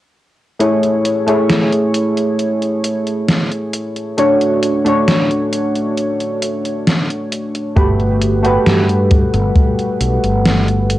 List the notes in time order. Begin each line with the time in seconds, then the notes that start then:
0.59 A3 E4 G#4 C#5, closed hi-hat
0.83 closed hi-hat
1.05 closed hi-hat
1.26 A3 E4 G#4 C#5, closed hi-hat
1.50 snare, closed hi-hat
1.73 closed hi-hat
1.94 closed hi-hat
2.17 closed hi-hat
2.39 closed hi-hat
2.62 closed hi-hat
2.84 closed hi-hat
3.07 closed hi-hat
3.29 snare, closed hi-hat
3.52 closed hi-hat
3.73 closed hi-hat
3.96 closed hi-hat
4.17 A3 D4 F#4 C#5, closed hi-hat
4.41 closed hi-hat
4.63 closed hi-hat
4.85 A3 D4 F#4 C#5, closed hi-hat
5.08 snare, closed hi-hat
5.31 closed hi-hat
5.53 closed hi-hat
5.75 closed hi-hat
5.97 closed hi-hat
6.20 closed hi-hat
6.42 closed hi-hat
6.65 closed hi-hat
6.87 snare, closed hi-hat
7.10 closed hi-hat
7.32 closed hi-hat
7.55 closed hi-hat
7.76 G1 G3 A3 F#4 G4 A4 B4 F#5, kick, closed hi-hat
8.00 closed hi-hat
8.22 closed hi-hat
8.43 A3 F#4 G4 B4, closed hi-hat
8.66 G2, snare, closed hi-hat
8.89 closed hi-hat
9.11 kick, closed hi-hat
9.34 G1, closed hi-hat
9.56 kick, closed hi-hat
9.79 closed hi-hat
10.00 B1, closed hi-hat
10.23 G1, closed hi-hat
10.45 snare, closed hi-hat
10.68 closed hi-hat
10.90 closed hi-hat